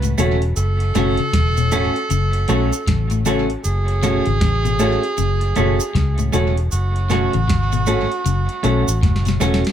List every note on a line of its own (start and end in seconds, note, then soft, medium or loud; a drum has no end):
0.00 0.14 C#2 loud
0.00 0.15 A2 medium
0.00 0.14 B4 loud
0.00 closed hi-hat medium
0.00 cabasa medium
0.18 0.52 E1 loud
0.18 0.38 C#3 medium
0.18 0.40 A3 medium
0.18 0.35 C#4 loud
0.18 0.41 C#4 medium
0.18 0.35 F#4 medium
0.18 0.41 F#4 medium
0.18 0.35 A4 medium
0.18 0.35 C#5 loud
0.18 closed hi-hat medium
0.18 cabasa medium
0.42 closed hi-hat medium
0.56 0.91 F#1 loud
0.56 3.22 A4 loud
0.56 closed hi-hat medium
0.56 cabasa medium
0.80 closed hi-hat medium
0.95 1.16 F#1 loud
0.95 1.15 B2 medium
0.95 1.17 A3 medium
0.95 1.12 C#4 medium
0.95 1.18 C#4 loud
0.95 1.12 F#4 medium
0.95 1.18 F#4 loud
0.95 1.12 A4 medium
0.95 1.12 C#5 loud
0.95 snare medium
0.95 closed hi-hat medium
0.95 cabasa medium
1.17 1.31 C#3 medium
1.17 closed hi-hat medium
1.33 1.88 E1 medium
1.33 1.53 C#3 medium
1.33 kick loud
1.33 snare loud
1.33 closed hi-hat loud
1.57 1.70 B2 medium
1.57 1.63 A4 soft
1.57 1.63 C#5 soft
1.57 closed hi-hat medium
1.57 cabasa medium
1.72 1.92 A2 medium
1.72 1.94 A3 medium
1.72 1.89 C#4 loud
1.72 1.95 C#4 loud
1.72 1.89 F#4 medium
1.72 1.95 F#4 loud
1.72 1.89 A4 medium
1.72 1.89 C#5 loud
1.72 closed hi-hat medium
1.72 cabasa medium
1.96 closed hi-hat soft
2.10 2.45 F#1 loud
2.10 2.30 C#3 medium
2.10 closed hi-hat medium
2.10 cabasa medium
2.33 closed hi-hat medium
2.48 2.70 B1 medium
2.48 2.69 B2 medium
2.48 2.71 A3 medium
2.48 2.65 C#4 loud
2.48 2.71 C#4 loud
2.48 2.66 F#4 medium
2.48 2.71 F#4 loud
2.48 2.66 A4 loud
2.48 2.66 C#5 loud
2.48 closed hi-hat medium
2.48 cabasa medium
2.73 closed hi-hat medium
2.73 cabasa medium
2.87 3.55 A1 medium
2.87 3.07 C#3 medium
2.87 kick loud
2.87 snare loud
2.87 closed hi-hat loud
3.10 3.23 A2 medium
3.10 closed hi-hat medium
3.10 cabasa medium
3.26 3.45 C#3 medium
3.26 3.48 A3 loud
3.26 3.43 C#4 loud
3.26 3.48 C#4 loud
3.26 3.43 F#4 medium
3.26 3.49 F#4 loud
3.26 3.43 A4 loud
3.26 3.43 C#5 loud
3.26 closed hi-hat medium
3.26 cabasa medium
3.50 closed hi-hat medium
3.64 4.20 F#1 loud
3.64 6.29 G#4 loud
3.64 closed hi-hat medium
3.64 cabasa medium
3.88 closed hi-hat soft
4.03 4.22 B2 medium
4.03 4.25 A3 medium
4.03 4.20 C#4 medium
4.03 4.25 C#4 medium
4.03 4.20 F#4 medium
4.03 4.26 F#4 loud
4.03 4.20 A4 medium
4.03 4.20 C#5 loud
4.03 snare medium
4.03 closed hi-hat medium
4.03 cabasa medium
4.26 4.40 G#1 medium
4.26 4.39 C#3 medium
4.26 closed hi-hat medium
4.41 4.96 A1 loud
4.41 4.61 C#3 medium
4.41 kick loud
4.41 snare loud
4.41 closed hi-hat medium
4.65 4.77 B2 medium
4.65 4.71 A4 soft
4.65 4.71 C#5 soft
4.65 closed hi-hat medium
4.65 cabasa soft
4.79 4.99 A2 medium
4.79 5.02 A3 medium
4.79 4.96 C#4 loud
4.79 5.02 C#4 medium
4.79 4.97 F#4 loud
4.79 5.02 F#4 medium
4.79 4.97 A4 medium
4.79 4.97 C#5 loud
4.79 closed hi-hat medium
4.79 cabasa medium
5.03 closed hi-hat medium
5.18 5.52 F#1 loud
5.18 5.38 C#3 loud
5.18 closed hi-hat medium
5.18 cabasa medium
5.41 closed hi-hat medium
5.56 5.78 F#1 medium
5.56 5.76 B2 medium
5.56 5.79 A3 medium
5.56 5.73 C#4 medium
5.56 5.79 C#4 medium
5.56 5.73 F#4 medium
5.56 5.79 F#4 medium
5.56 5.74 A4 medium
5.56 5.74 C#5 loud
5.56 closed hi-hat medium
5.56 cabasa medium
5.80 closed hi-hat medium
5.80 cabasa medium
5.95 6.29 C#2 medium
5.95 6.15 C#3 medium
5.95 kick loud
5.95 snare loud
5.95 closed hi-hat medium
6.18 6.31 A2 medium
6.18 closed hi-hat medium
6.18 cabasa medium
6.32 6.68 E1 loud
6.32 6.53 C#3 medium
6.32 6.55 A3 medium
6.32 6.50 C#4 loud
6.32 6.55 C#4 medium
6.32 6.50 F#4 medium
6.32 6.56 F#4 medium
6.32 6.51 A4 loud
6.32 6.51 C#5 loud
6.32 closed hi-hat medium
6.32 cabasa medium
6.57 closed hi-hat medium
6.72 7.27 F#1 loud
6.72 9.37 F#4 loud
6.72 closed hi-hat medium
6.72 cabasa medium
6.96 closed hi-hat soft
7.10 7.30 B2 medium
7.10 7.32 A3 medium
7.10 7.27 C#4 medium
7.10 7.33 C#4 loud
7.10 7.27 F#4 medium
7.10 7.33 F#4 loud
7.10 7.27 A4 medium
7.10 7.28 C#5 medium
7.10 snare medium
7.10 closed hi-hat medium
7.10 cabasa medium
7.33 7.47 A1 medium
7.33 7.46 C#3 medium
7.33 closed hi-hat medium
7.48 8.04 G#1 medium
7.48 7.68 C#3 medium
7.48 kick loud
7.48 snare loud
7.48 closed hi-hat loud
7.72 7.85 B2 medium
7.72 7.79 A4 soft
7.72 7.79 C#5 soft
7.72 closed hi-hat medium
7.72 cabasa medium
7.87 8.07 A2 medium
7.87 8.09 A3 medium
7.87 8.04 C#4 loud
7.87 8.09 C#4 loud
7.87 8.04 F#4 medium
7.87 8.10 F#4 loud
7.87 8.04 A4 medium
7.87 8.05 C#5 loud
7.87 closed hi-hat medium
7.87 cabasa medium
8.12 closed hi-hat soft
8.26 8.47 F#1 loud
8.26 8.45 C#3 medium
8.26 closed hi-hat medium
8.26 cabasa medium
8.49 closed hi-hat medium
8.63 8.85 B1 medium
8.63 8.84 B2 medium
8.63 8.86 A3 medium
8.63 8.81 C#4 loud
8.63 8.86 C#4 medium
8.63 8.81 F#4 medium
8.63 8.87 F#4 medium
8.63 8.81 A4 medium
8.63 8.81 C#5 loud
8.63 closed hi-hat medium
8.63 cabasa soft
8.88 9.01 A1 medium
8.88 closed hi-hat medium
8.88 cabasa medium
9.03 9.36 F#1 medium
9.03 9.22 A2 medium
9.03 kick loud
9.03 snare medium
9.03 closed hi-hat medium
9.16 snare medium
9.25 9.38 B2 medium
9.25 snare medium
9.25 closed hi-hat medium
9.25 cabasa medium
9.40 9.62 E1 loud
9.40 9.61 C#3 medium
9.40 9.63 A3 medium
9.40 9.58 C#4 loud
9.40 9.63 C#4 medium
9.40 9.58 F#4 medium
9.40 9.63 F#4 loud
9.40 9.58 A4 medium
9.40 9.58 C#5 loud
9.40 snare medium
9.40 closed hi-hat medium
9.40 cabasa medium
9.54 snare loud
9.65 snare loud
9.65 closed hi-hat medium